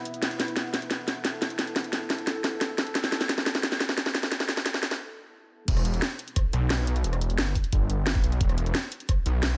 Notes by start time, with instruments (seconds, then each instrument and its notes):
Already playing: ambient pad B3 E4 B4
0.05 closed hi-hat
0.14 closed hi-hat
0.23 ambient pad A4, snare, closed hi-hat
0.31 closed hi-hat
0.40 snare, closed hi-hat
0.48 closed hi-hat
0.57 snare, closed hi-hat
0.74 snare, closed hi-hat
0.82 closed hi-hat
0.91 snare, closed hi-hat
1.08 snare, closed hi-hat
1.25 snare, closed hi-hat
1.42 snare, closed hi-hat
1.50 closed hi-hat
1.59 snare, closed hi-hat
1.67 closed hi-hat
1.76 snare, closed hi-hat
1.84 closed hi-hat
1.93 snare, closed hi-hat
2.10 snare, closed hi-hat
2.18 closed hi-hat
2.27 snare, closed hi-hat
2.44 snare, closed hi-hat
2.61 snare, closed hi-hat
2.78 snare, closed hi-hat
2.87 closed hi-hat
2.95 snare, closed hi-hat
3.04 snare, closed hi-hat
3.12 snare, closed hi-hat
3.21 snare, closed hi-hat
3.29 snare, closed hi-hat
3.38 snare
3.46 snare, closed hi-hat
3.55 snare, closed hi-hat
3.63 snare, closed hi-hat
3.72 snare
3.80 snare, closed hi-hat
3.89 snare
3.98 snare, closed hi-hat
4.06 snare
4.15 snare, closed hi-hat
4.23 snare, closed hi-hat
4.32 snare, closed hi-hat
4.40 snare, closed hi-hat
4.49 snare, closed hi-hat
4.57 snare, closed hi-hat
4.66 snare, closed hi-hat
4.74 snare
4.83 snare, closed hi-hat
4.91 snare, closed hi-hat
5.68 detuned saw bass E1, kick, closed hi-hat, crash
5.77 cross-stick, closed hi-hat
5.85 closed hi-hat
5.94 closed hi-hat
6.02 snare, closed hi-hat
6.19 closed hi-hat
6.28 closed hi-hat
6.36 kick, cross-stick, closed hi-hat
6.53 detuned saw bass B1, closed hi-hat
6.70 snare, closed hi-hat
6.87 detuned saw bass B1, closed hi-hat
6.96 closed hi-hat
7.04 detuned saw bass E1, closed hi-hat
7.13 cross-stick, closed hi-hat
7.21 closed hi-hat
7.30 closed hi-hat
7.38 detuned saw bass G1, snare, closed hi-hat
7.55 kick, open hi-hat
7.64 closed hi-hat
7.73 detuned saw bass G1, kick, closed hi-hat
7.90 closed hi-hat
8.07 snare, closed hi-hat
8.15 kick
8.24 detuned saw bass B1, closed hi-hat
8.32 closed hi-hat
8.41 detuned saw bass E1, kick, closed hi-hat
8.49 cross-stick, closed hi-hat
8.58 closed hi-hat
8.66 closed hi-hat
8.75 snare, closed hi-hat
8.92 closed hi-hat
9.00 closed hi-hat
9.09 kick, cross-stick, closed hi-hat
9.26 detuned saw bass B1, closed hi-hat
9.43 snare, closed hi-hat